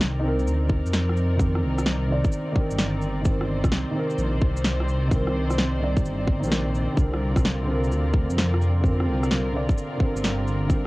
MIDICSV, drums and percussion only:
0, 0, Header, 1, 2, 480
1, 0, Start_track
1, 0, Key_signature, -3, "minor"
1, 0, Tempo, 465116
1, 1441, Time_signature, 4, 2, 24, 8
1, 11216, End_track
2, 0, Start_track
2, 0, Title_t, "Drums"
2, 7, Note_on_c, 9, 38, 98
2, 110, Note_off_c, 9, 38, 0
2, 404, Note_on_c, 9, 82, 31
2, 489, Note_off_c, 9, 82, 0
2, 489, Note_on_c, 9, 82, 55
2, 592, Note_off_c, 9, 82, 0
2, 717, Note_on_c, 9, 36, 100
2, 821, Note_off_c, 9, 36, 0
2, 888, Note_on_c, 9, 82, 56
2, 964, Note_off_c, 9, 82, 0
2, 964, Note_on_c, 9, 38, 101
2, 964, Note_on_c, 9, 82, 56
2, 1067, Note_off_c, 9, 38, 0
2, 1067, Note_off_c, 9, 82, 0
2, 1128, Note_on_c, 9, 37, 58
2, 1206, Note_on_c, 9, 82, 29
2, 1231, Note_off_c, 9, 37, 0
2, 1309, Note_off_c, 9, 82, 0
2, 1439, Note_on_c, 9, 36, 109
2, 1445, Note_on_c, 9, 82, 57
2, 1542, Note_off_c, 9, 36, 0
2, 1548, Note_off_c, 9, 82, 0
2, 1602, Note_on_c, 9, 37, 63
2, 1706, Note_off_c, 9, 37, 0
2, 1842, Note_on_c, 9, 37, 61
2, 1842, Note_on_c, 9, 82, 57
2, 1920, Note_on_c, 9, 38, 96
2, 1945, Note_off_c, 9, 37, 0
2, 1945, Note_off_c, 9, 82, 0
2, 2024, Note_off_c, 9, 38, 0
2, 2317, Note_on_c, 9, 36, 101
2, 2318, Note_on_c, 9, 82, 31
2, 2393, Note_off_c, 9, 82, 0
2, 2393, Note_on_c, 9, 82, 56
2, 2421, Note_off_c, 9, 36, 0
2, 2497, Note_off_c, 9, 82, 0
2, 2638, Note_on_c, 9, 36, 103
2, 2741, Note_off_c, 9, 36, 0
2, 2793, Note_on_c, 9, 82, 57
2, 2874, Note_off_c, 9, 82, 0
2, 2874, Note_on_c, 9, 38, 101
2, 2874, Note_on_c, 9, 82, 55
2, 2978, Note_off_c, 9, 38, 0
2, 2978, Note_off_c, 9, 82, 0
2, 3113, Note_on_c, 9, 82, 30
2, 3217, Note_off_c, 9, 82, 0
2, 3353, Note_on_c, 9, 82, 56
2, 3357, Note_on_c, 9, 36, 112
2, 3456, Note_off_c, 9, 82, 0
2, 3460, Note_off_c, 9, 36, 0
2, 3518, Note_on_c, 9, 37, 62
2, 3622, Note_off_c, 9, 37, 0
2, 3756, Note_on_c, 9, 36, 106
2, 3762, Note_on_c, 9, 37, 61
2, 3762, Note_on_c, 9, 82, 57
2, 3837, Note_on_c, 9, 38, 99
2, 3859, Note_off_c, 9, 36, 0
2, 3865, Note_off_c, 9, 37, 0
2, 3865, Note_off_c, 9, 82, 0
2, 3940, Note_off_c, 9, 38, 0
2, 4235, Note_on_c, 9, 82, 31
2, 4316, Note_off_c, 9, 82, 0
2, 4316, Note_on_c, 9, 82, 54
2, 4419, Note_off_c, 9, 82, 0
2, 4557, Note_on_c, 9, 36, 106
2, 4660, Note_off_c, 9, 36, 0
2, 4713, Note_on_c, 9, 82, 53
2, 4792, Note_off_c, 9, 82, 0
2, 4792, Note_on_c, 9, 38, 106
2, 4792, Note_on_c, 9, 82, 52
2, 4895, Note_off_c, 9, 38, 0
2, 4895, Note_off_c, 9, 82, 0
2, 4954, Note_on_c, 9, 37, 56
2, 5042, Note_on_c, 9, 82, 29
2, 5057, Note_off_c, 9, 37, 0
2, 5145, Note_off_c, 9, 82, 0
2, 5276, Note_on_c, 9, 36, 112
2, 5277, Note_on_c, 9, 82, 54
2, 5379, Note_off_c, 9, 36, 0
2, 5380, Note_off_c, 9, 82, 0
2, 5440, Note_on_c, 9, 37, 59
2, 5544, Note_off_c, 9, 37, 0
2, 5680, Note_on_c, 9, 37, 60
2, 5680, Note_on_c, 9, 82, 53
2, 5762, Note_on_c, 9, 38, 99
2, 5783, Note_off_c, 9, 37, 0
2, 5783, Note_off_c, 9, 82, 0
2, 5865, Note_off_c, 9, 38, 0
2, 6157, Note_on_c, 9, 36, 101
2, 6162, Note_on_c, 9, 82, 29
2, 6246, Note_off_c, 9, 82, 0
2, 6246, Note_on_c, 9, 82, 51
2, 6260, Note_off_c, 9, 36, 0
2, 6349, Note_off_c, 9, 82, 0
2, 6475, Note_on_c, 9, 36, 107
2, 6578, Note_off_c, 9, 36, 0
2, 6641, Note_on_c, 9, 82, 54
2, 6726, Note_off_c, 9, 82, 0
2, 6726, Note_on_c, 9, 38, 106
2, 6726, Note_on_c, 9, 82, 52
2, 6829, Note_off_c, 9, 38, 0
2, 6829, Note_off_c, 9, 82, 0
2, 6965, Note_on_c, 9, 82, 29
2, 7068, Note_off_c, 9, 82, 0
2, 7195, Note_on_c, 9, 36, 107
2, 7205, Note_on_c, 9, 82, 53
2, 7298, Note_off_c, 9, 36, 0
2, 7309, Note_off_c, 9, 82, 0
2, 7364, Note_on_c, 9, 37, 61
2, 7467, Note_off_c, 9, 37, 0
2, 7595, Note_on_c, 9, 36, 101
2, 7604, Note_on_c, 9, 37, 62
2, 7604, Note_on_c, 9, 82, 50
2, 7687, Note_on_c, 9, 38, 102
2, 7698, Note_off_c, 9, 36, 0
2, 7707, Note_off_c, 9, 37, 0
2, 7707, Note_off_c, 9, 82, 0
2, 7790, Note_off_c, 9, 38, 0
2, 8089, Note_on_c, 9, 82, 28
2, 8169, Note_off_c, 9, 82, 0
2, 8169, Note_on_c, 9, 82, 50
2, 8273, Note_off_c, 9, 82, 0
2, 8396, Note_on_c, 9, 36, 105
2, 8499, Note_off_c, 9, 36, 0
2, 8565, Note_on_c, 9, 82, 53
2, 8649, Note_off_c, 9, 82, 0
2, 8649, Note_on_c, 9, 38, 106
2, 8649, Note_on_c, 9, 82, 53
2, 8752, Note_off_c, 9, 38, 0
2, 8752, Note_off_c, 9, 82, 0
2, 8810, Note_on_c, 9, 37, 59
2, 8891, Note_on_c, 9, 82, 28
2, 8914, Note_off_c, 9, 37, 0
2, 8994, Note_off_c, 9, 82, 0
2, 9119, Note_on_c, 9, 36, 106
2, 9135, Note_on_c, 9, 82, 52
2, 9222, Note_off_c, 9, 36, 0
2, 9239, Note_off_c, 9, 82, 0
2, 9289, Note_on_c, 9, 37, 60
2, 9392, Note_off_c, 9, 37, 0
2, 9528, Note_on_c, 9, 37, 63
2, 9528, Note_on_c, 9, 82, 52
2, 9607, Note_on_c, 9, 38, 96
2, 9631, Note_off_c, 9, 37, 0
2, 9631, Note_off_c, 9, 82, 0
2, 9711, Note_off_c, 9, 38, 0
2, 10000, Note_on_c, 9, 36, 100
2, 10012, Note_on_c, 9, 82, 28
2, 10089, Note_off_c, 9, 82, 0
2, 10089, Note_on_c, 9, 82, 52
2, 10103, Note_off_c, 9, 36, 0
2, 10192, Note_off_c, 9, 82, 0
2, 10320, Note_on_c, 9, 36, 99
2, 10423, Note_off_c, 9, 36, 0
2, 10490, Note_on_c, 9, 82, 54
2, 10568, Note_off_c, 9, 82, 0
2, 10568, Note_on_c, 9, 38, 97
2, 10568, Note_on_c, 9, 82, 53
2, 10672, Note_off_c, 9, 38, 0
2, 10672, Note_off_c, 9, 82, 0
2, 10810, Note_on_c, 9, 82, 28
2, 10913, Note_off_c, 9, 82, 0
2, 11039, Note_on_c, 9, 36, 102
2, 11044, Note_on_c, 9, 82, 56
2, 11143, Note_off_c, 9, 36, 0
2, 11147, Note_off_c, 9, 82, 0
2, 11216, End_track
0, 0, End_of_file